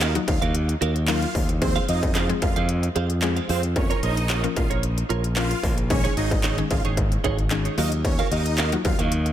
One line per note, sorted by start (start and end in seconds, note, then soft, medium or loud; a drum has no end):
0.00 0.17 D#2 loud
0.00 0.13 D#4 medium
0.00 0.18 F#4 medium
0.00 0.14 A#4 loud
0.00 0.13 D#5 medium
0.00 0.14 F5 loud
0.00 snare loud
0.00 clap loud
0.00 closed hi-hat medium
0.15 0.26 F#3 medium
0.15 0.26 A#3 medium
0.15 0.26 D#4 medium
0.15 0.26 F4 medium
0.15 0.26 F#4 medium
0.15 muted clean electric guitar stroke soft
0.15 closed hi-hat medium
0.27 0.39 D#2 medium
0.27 0.96 F#3 medium
0.27 0.96 A#3 medium
0.27 0.96 D#4 medium
0.27 0.97 F4 medium
0.27 0.40 F4 medium
0.27 0.97 F#4 medium
0.27 0.40 F5 medium
0.27 muted clean electric guitar stroke soft
0.27 kick medium
0.27 closed hi-hat medium
0.42 0.73 D#2 medium
0.42 0.55 F#4 medium
0.42 0.54 A#4 medium
0.42 0.54 F5 medium
0.42 closed hi-hat medium
0.55 closed hi-hat loud
0.68 muted clean electric guitar stroke medium
0.68 closed hi-hat medium
0.81 1.24 D#2 medium
0.81 0.99 F#4 loud
0.81 0.95 A#4 loud
0.81 0.94 F5 loud
0.81 closed hi-hat medium
0.95 muted clean electric guitar stroke soft
0.95 closed hi-hat medium
1.08 1.54 F#3 medium
1.08 1.54 A#3 medium
1.08 1.54 D#4 medium
1.08 1.54 F4 medium
1.08 1.47 F4 medium
1.08 1.54 A#4 loud
1.08 1.47 F5 medium
1.08 muted clean electric guitar stroke soft
1.08 snare loud
1.08 clap loud
1.08 closed hi-hat loud
1.22 muted clean electric guitar stroke soft
1.22 closed hi-hat medium
1.35 1.78 D#2 loud
1.35 kick medium
1.35 open hi-hat medium
1.49 muted clean electric guitar stroke soft
1.49 closed hi-hat medium
1.61 2.18 F3 medium
1.61 2.18 G#3 medium
1.61 2.19 C4 medium
1.61 1.85 C4 medium
1.61 2.19 F4 medium
1.61 2.19 G#4 medium
1.61 1.84 C5 loud
1.61 muted clean electric guitar stroke soft
1.61 kick loud
1.61 closed hi-hat medium
1.76 1.87 G#4 medium
1.76 1.88 C5 medium
1.76 1.88 F5 loud
1.76 closed hi-hat medium
1.88 2.31 F2 loud
1.88 2.27 D#4 medium
1.88 2.02 G#4 medium
1.88 2.02 C5 medium
1.88 2.27 D#5 medium
1.88 2.01 F5 medium
1.88 closed hi-hat medium
2.03 muted clean electric guitar stroke soft
2.03 kick loud
2.03 closed hi-hat medium
2.15 2.33 G#4 medium
2.15 2.29 C5 medium
2.15 2.28 F5 loud
2.15 snare loud
2.15 clap loud
2.15 closed hi-hat medium
2.29 2.40 F3 medium
2.29 2.40 G#3 medium
2.29 2.40 C4 medium
2.29 2.40 F4 medium
2.29 2.40 G#4 medium
2.29 muted clean electric guitar stroke medium
2.29 closed hi-hat medium
2.42 2.54 F2 medium
2.42 3.11 F3 medium
2.42 3.11 G#3 medium
2.42 3.11 C4 medium
2.42 3.11 F4 medium
2.42 2.54 F4 medium
2.42 3.11 A#4 medium
2.42 2.54 F5 medium
2.42 muted clean electric guitar stroke soft
2.42 kick loud
2.42 closed hi-hat medium
2.56 2.88 F2 medium
2.56 2.69 G#4 medium
2.56 2.69 C5 medium
2.56 2.69 F5 medium
2.56 closed hi-hat medium
2.69 closed hi-hat loud
2.83 muted clean electric guitar stroke medium
2.83 closed hi-hat medium
2.95 3.38 F2 medium
2.95 3.13 G#4 medium
2.95 3.09 C5 medium
2.95 3.08 F5 loud
2.95 closed hi-hat medium
3.10 muted clean electric guitar stroke soft
3.10 closed hi-hat medium
3.22 3.68 F3 loud
3.22 3.68 G#3 medium
3.22 3.68 C4 medium
3.22 3.68 F4 loud
3.22 3.68 G#4 loud
3.22 muted clean electric guitar stroke soft
3.22 snare medium
3.22 clap loud
3.22 closed hi-hat loud
3.36 3.48 G#4 medium
3.36 3.48 C5 medium
3.36 3.49 F5 medium
3.36 closed hi-hat medium
3.49 3.92 F2 medium
3.49 3.62 C4 medium
3.49 3.67 G#4 medium
3.49 3.61 C5 medium
3.49 3.63 C5 medium
3.49 3.62 F5 medium
3.49 open hi-hat medium
3.63 muted clean electric guitar stroke soft
3.63 closed hi-hat medium
3.76 4.33 F3 medium
3.76 4.33 A#3 medium
3.76 4.33 C#4 medium
3.76 3.99 C#4 medium
3.76 4.33 F4 medium
3.76 4.33 A#4 medium
3.76 3.99 C#5 loud
3.76 muted clean electric guitar stroke soft
3.76 kick loud
3.76 closed hi-hat medium
3.90 4.01 F4 medium
3.90 4.02 A#4 medium
3.90 4.02 C#5 medium
3.90 closed hi-hat medium
4.02 4.45 A#1 loud
4.02 4.42 D#4 medium
4.02 4.17 F4 medium
4.02 4.16 A#4 medium
4.02 4.16 C#5 medium
4.02 4.42 D#5 medium
4.02 closed hi-hat medium
4.17 muted clean electric guitar stroke soft
4.17 closed hi-hat medium
4.29 4.47 F4 medium
4.29 4.43 A#4 medium
4.29 4.42 C#5 medium
4.29 snare loud
4.29 clap loud
4.29 closed hi-hat medium
4.43 4.54 F3 medium
4.43 4.54 A#3 medium
4.43 4.54 C#4 medium
4.43 4.54 F4 medium
4.43 4.55 A#4 medium
4.43 muted clean electric guitar stroke soft
4.43 closed hi-hat medium
4.56 4.68 A#1 medium
4.56 5.25 F3 medium
4.56 5.25 A#3 medium
4.56 5.25 C#4 medium
4.56 5.25 F4 medium
4.56 4.69 F4 medium
4.56 5.25 A#4 medium
4.56 4.68 F5 medium
4.56 muted clean electric guitar stroke soft
4.56 kick medium
4.56 closed hi-hat medium
4.70 5.02 A#1 medium
4.70 4.83 F4 soft
4.70 4.83 A#4 medium
4.70 4.83 C#5 medium
4.70 closed hi-hat medium
4.83 closed hi-hat loud
4.97 muted clean electric guitar stroke soft
4.97 closed hi-hat medium
5.09 5.53 A#1 medium
5.09 5.27 F4 medium
5.09 5.23 A#4 medium
5.09 5.22 C#5 medium
5.09 closed hi-hat medium
5.24 muted clean electric guitar stroke soft
5.24 closed hi-hat medium
5.36 5.82 F3 medium
5.36 5.82 A#3 medium
5.36 5.83 C#4 medium
5.36 5.83 F4 medium
5.36 5.76 F4 medium
5.36 5.83 A#4 medium
5.36 5.75 F5 medium
5.36 muted clean electric guitar stroke medium
5.36 snare medium
5.36 clap loud
5.36 closed hi-hat loud
5.51 muted clean electric guitar stroke soft
5.51 closed hi-hat medium
5.63 6.06 A#1 loud
5.63 kick loud
5.63 open hi-hat medium
5.77 muted clean electric guitar stroke soft
5.77 closed hi-hat medium
5.90 6.47 D#3 medium
5.90 6.47 G#3 medium
5.90 6.47 C#4 medium
5.90 6.13 C#4 medium
5.90 6.47 D#4 medium
5.90 6.47 G#4 medium
5.90 6.13 C#5 loud
5.90 muted clean electric guitar stroke soft
5.90 kick loud
5.90 closed hi-hat medium
6.04 6.16 D#4 medium
6.04 6.16 G#4 medium
6.04 6.17 C#5 medium
6.04 closed hi-hat medium
6.17 6.60 G#1 loud
6.17 6.31 D#4 medium
6.17 6.56 D#4 medium
6.17 6.31 G#4 medium
6.17 6.30 C#5 medium
6.17 6.56 D#5 medium
6.17 closed hi-hat medium
6.31 muted clean electric guitar stroke soft
6.31 kick loud
6.31 closed hi-hat medium
6.44 6.61 D#4 medium
6.44 6.57 G#4 medium
6.44 6.57 C#5 loud
6.44 snare loud
6.44 clap loud
6.44 closed hi-hat loud
6.58 6.69 D#3 medium
6.58 6.69 G#3 medium
6.58 6.69 C#4 medium
6.58 6.69 D#4 medium
6.58 6.69 G#4 medium
6.58 muted clean electric guitar stroke medium
6.58 closed hi-hat medium
6.71 6.82 G#1 medium
6.71 7.39 D#3 medium
6.71 7.39 G#3 medium
6.71 7.39 C#4 medium
6.71 7.39 D#4 medium
6.71 6.83 F4 medium
6.71 7.40 G#4 medium
6.71 6.82 F5 medium
6.71 muted clean electric guitar stroke soft
6.71 kick medium
6.71 closed hi-hat medium
6.85 7.16 G#1 medium
6.85 6.98 D#4 medium
6.85 6.97 G#4 medium
6.85 6.97 C#5 medium
6.85 closed hi-hat medium
6.97 kick loud
6.97 closed hi-hat loud
7.12 muted clean electric guitar stroke medium
7.12 closed hi-hat medium
7.24 7.67 G#1 medium
7.24 7.42 D#4 medium
7.24 7.38 G#4 loud
7.24 7.37 C#5 loud
7.24 kick loud
7.24 closed hi-hat medium
7.38 muted clean electric guitar stroke medium
7.38 closed hi-hat medium
7.51 7.78 D#3 loud
7.51 7.78 G#3 loud
7.51 7.78 C#4 medium
7.51 7.77 D#4 medium
7.51 7.78 G#4 loud
7.51 muted clean electric guitar stroke soft
7.51 snare medium
7.51 clap loud
7.51 closed hi-hat loud
7.65 7.78 D#4 medium
7.65 7.77 G#4 medium
7.65 7.77 C#5 medium
7.65 closed hi-hat medium
7.78 8.20 D#2 loud
7.78 8.57 F#3 medium
7.78 8.57 A#3 medium
7.78 8.57 D#4 medium
7.78 7.90 D#4 medium
7.78 8.57 F4 medium
7.78 7.95 F#4 medium
7.78 8.57 F#4 medium
7.78 7.92 A#4 medium
7.78 7.89 D#5 medium
7.78 7.91 F5 loud
7.78 open hi-hat medium
7.92 muted clean electric guitar stroke medium
7.92 closed hi-hat medium
8.04 8.27 C#4 medium
8.04 8.27 C#5 medium
8.04 muted clean electric guitar stroke soft
8.04 kick loud
8.04 closed hi-hat medium
8.19 8.30 F#4 medium
8.19 8.31 A#4 medium
8.19 8.31 F5 medium
8.19 closed hi-hat medium
8.31 8.74 D#2 loud
8.31 8.70 D#4 medium
8.31 8.45 F#4 medium
8.31 8.45 A#4 medium
8.31 8.70 D#5 medium
8.31 8.44 F5 medium
8.31 closed hi-hat medium
8.46 muted clean electric guitar stroke medium
8.46 closed hi-hat medium
8.58 8.75 F#4 medium
8.58 8.72 A#4 loud
8.58 8.71 F5 loud
8.58 snare loud
8.58 clap loud
8.58 closed hi-hat loud
8.72 8.83 F#3 medium
8.72 8.83 A#3 medium
8.72 8.83 D#4 medium
8.72 8.83 F4 medium
8.72 8.83 F#4 medium
8.72 muted clean electric guitar stroke medium
8.72 closed hi-hat medium
8.85 8.96 D#2 medium
8.85 9.33 F#3 medium
8.85 9.33 A#3 medium
8.85 9.33 D#4 medium
8.85 9.33 F4 medium
8.85 8.97 F4 medium
8.85 9.33 F#4 medium
8.85 8.97 F5 medium
8.85 muted clean electric guitar stroke soft
8.85 kick loud
8.85 closed hi-hat medium
8.99 9.30 D#2 medium
8.99 9.12 F#4 medium
8.99 9.12 A#4 medium
8.99 9.11 F5 medium
8.99 closed hi-hat medium
9.12 closed hi-hat loud
9.26 muted clean electric guitar stroke medium
9.26 closed hi-hat medium